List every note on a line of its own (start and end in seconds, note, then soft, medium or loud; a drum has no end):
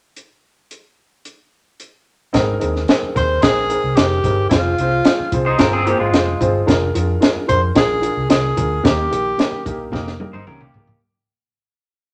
0.16 closed hi-hat medium
0.71 closed hi-hat medium
1.25 closed hi-hat medium
1.80 closed hi-hat medium
2.33 2.55 G#1 medium
2.33 3.11 G#2 medium
2.33 2.53 C4 loud
2.33 2.53 D#4 medium
2.33 2.54 G#4 medium
2.33 2.54 A#4 loud
2.33 kick medium
2.33 snare medium
2.33 closed hi-hat medium
2.59 2.83 D#2 medium
2.59 2.80 C4 medium
2.59 2.80 D#4 medium
2.59 2.80 G#4 medium
2.59 2.81 A#4 medium
2.59 closed hi-hat medium
2.76 snare soft
2.88 3.08 C4 medium
2.88 3.08 D#4 medium
2.88 3.08 G#4 medium
2.88 3.08 A#4 medium
2.88 snare loud
2.88 closed hi-hat medium
3.03 muted fingered electric bass stroke soft
3.14 3.37 D#2 medium
3.14 3.34 C4 medium
3.14 3.35 D#4 medium
3.14 3.35 G#4 medium
3.14 3.35 A#4 medium
3.14 3.42 C5 medium
3.14 kick medium
3.14 closed hi-hat medium
3.41 3.75 A#1 medium
3.41 3.62 C4 medium
3.41 3.62 D#4 medium
3.41 3.97 G#4 loud
3.41 3.62 G#4 medium
3.41 3.62 A#4 loud
3.41 kick loud
3.41 snare loud
3.41 closed hi-hat medium
3.69 3.89 C4 medium
3.69 3.89 D#4 medium
3.69 3.89 G#4 medium
3.69 3.90 A#4 medium
3.69 closed hi-hat medium
3.84 3.98 C2 medium
3.96 4.18 F1 medium
3.96 4.16 C4 medium
3.96 4.17 D#4 medium
3.96 4.49 G4 medium
3.96 4.16 G#4 medium
3.96 4.17 A#4 medium
3.96 snare loud
3.96 closed hi-hat loud
4.24 4.45 G1 medium
4.24 4.43 C4 medium
4.24 4.44 D#4 medium
4.24 4.44 G#4 medium
4.24 4.44 A#4 medium
4.24 kick medium
4.24 closed hi-hat medium
4.49 4.72 F1 medium
4.49 4.71 C4 medium
4.49 5.54 F4 medium
4.49 4.71 F4 medium
4.49 4.71 G#4 medium
4.49 4.72 C5 medium
4.49 kick loud
4.49 snare medium
4.49 closed hi-hat medium
4.78 5.00 C2 medium
4.78 4.98 C4 medium
4.78 4.98 F4 medium
4.78 4.99 G#4 medium
4.78 4.99 C5 medium
4.78 closed hi-hat medium
5.05 5.25 C4 medium
5.05 5.25 F4 medium
5.05 5.26 G#4 medium
5.05 5.26 C5 medium
5.05 snare loud
5.05 closed hi-hat medium
5.20 muted fingered electric bass stroke soft
5.32 5.53 C2 medium
5.32 5.52 C4 medium
5.32 5.52 F4 medium
5.32 5.52 G#4 medium
5.32 5.53 C5 medium
5.32 kick medium
5.32 closed hi-hat medium
5.46 5.59 D#4 medium
5.46 5.59 C5 medium
5.58 5.91 G1 medium
5.58 5.78 C4 loud
5.58 5.78 F4 loud
5.58 5.79 G#4 medium
5.58 5.72 A#4 medium
5.58 5.79 C5 loud
5.58 kick medium
5.58 snare loud
5.58 closed hi-hat medium
5.73 5.86 C4 medium
5.73 5.85 G#4 medium
5.85 5.99 A#3 medium
5.85 6.05 C4 medium
5.85 6.06 F4 medium
5.85 5.99 G4 medium
5.85 6.06 G#4 medium
5.85 6.06 C5 medium
5.85 closed hi-hat medium
6.00 6.13 G#1 medium
6.00 6.64 G#3 medium
6.00 6.64 F4 medium
6.12 6.34 F1 medium
6.12 6.32 C4 medium
6.12 6.33 F4 medium
6.12 6.33 G#4 medium
6.12 6.33 C5 medium
6.12 snare medium
6.12 closed hi-hat loud
6.40 6.61 G1 medium
6.40 6.60 C4 medium
6.40 6.60 F4 medium
6.40 6.60 G#4 medium
6.40 6.60 C5 medium
6.40 kick medium
6.40 closed hi-hat medium
6.66 6.89 F1 medium
6.66 6.86 D4 loud
6.66 6.87 F4 loud
6.66 6.87 G#4 medium
6.66 6.87 A#4 loud
6.66 kick loud
6.66 snare medium
6.66 closed hi-hat medium
6.94 7.16 F2 medium
6.94 7.14 D4 medium
6.94 7.14 F4 medium
6.94 7.14 G#4 medium
6.94 7.15 A#4 medium
6.94 closed hi-hat medium
7.20 7.40 D4 medium
7.20 7.41 F4 medium
7.20 7.41 G#4 medium
7.20 7.41 A#4 medium
7.20 snare loud
7.20 closed hi-hat medium
7.35 muted fingered electric bass stroke soft
7.47 7.70 F2 medium
7.47 7.67 D4 medium
7.47 7.67 F4 medium
7.47 7.68 G#4 medium
7.47 7.68 A#4 medium
7.47 7.61 C5 medium
7.47 kick medium
7.47 closed hi-hat medium
7.75 8.08 A#1 medium
7.75 7.95 D4 medium
7.75 7.95 F4 medium
7.75 7.95 G#4 medium
7.75 8.27 G#4 medium
7.75 7.96 A#4 medium
7.75 kick loud
7.75 snare loud
7.75 closed hi-hat medium
8.01 8.22 D4 medium
8.01 8.22 F4 medium
8.01 8.22 G#4 medium
8.01 8.22 A#4 medium
8.01 closed hi-hat medium
8.17 8.27 C2 medium
8.28 8.51 C2 medium
8.28 8.49 D4 medium
8.28 8.49 F4 medium
8.28 8.49 G#4 medium
8.28 8.87 G#4 medium
8.28 8.49 A#4 medium
8.28 snare loud
8.28 closed hi-hat loud
8.56 8.78 D2 medium
8.56 8.76 D4 medium
8.56 8.76 F4 medium
8.56 8.77 G#4 medium
8.56 8.77 A#4 medium
8.56 kick medium
8.56 closed hi-hat medium
8.83 9.06 D#2 medium
8.83 9.61 D#3 medium
8.83 9.03 A#3 medium
8.83 9.04 D#4 medium
8.83 9.04 G4 medium
8.83 9.93 G4 medium
8.83 9.04 A#4 medium
8.83 kick loud
8.83 snare medium
8.83 closed hi-hat medium
9.11 9.33 A#1 medium
9.11 9.31 A#3 medium
9.11 9.31 D#4 medium
9.11 9.31 G4 medium
9.11 9.31 A#4 medium
9.11 closed hi-hat medium
9.38 9.58 A#3 medium
9.38 9.58 D#4 medium
9.38 9.58 G4 medium
9.38 9.59 A#4 medium
9.38 snare loud
9.38 closed hi-hat medium
9.52 muted fingered electric bass stroke soft
9.65 9.93 A#1 medium
9.65 9.85 A#3 medium
9.65 9.85 D#4 medium
9.65 9.86 G4 medium
9.65 9.86 A#4 medium
9.65 kick loud
9.65 closed hi-hat medium
9.92 10.25 F1 medium
9.92 10.12 A#3 loud
9.92 10.12 D#4 loud
9.92 10.12 G4 medium
9.92 10.12 A#4 loud
9.92 kick medium
9.92 snare soft
10.07 snare soft
10.20 10.39 A#3 medium
10.20 10.40 D#4 medium
10.20 10.40 G4 medium
10.20 10.40 A#4 medium
10.20 high tom medium
10.33 10.44 G1 medium
10.33 10.47 D#4 medium
10.33 10.46 C5 medium
10.33 high tom medium
10.47 10.68 C2 medium
10.47 10.67 A#3 medium
10.47 10.60 C#4 medium
10.47 10.67 D#4 medium
10.47 10.67 G4 medium
10.47 10.60 A#4 medium
10.47 10.67 A#4 medium
10.47 mid tom medium
10.61 11.00 A#3 medium
10.61 10.99 G4 medium
10.61 mid tom medium
10.74 10.95 C#2 medium
10.74 10.95 A#3 medium
10.74 10.95 D#4 medium
10.74 10.95 G4 medium
10.74 10.95 A#4 medium
10.74 floor tom medium
10.87 floor tom medium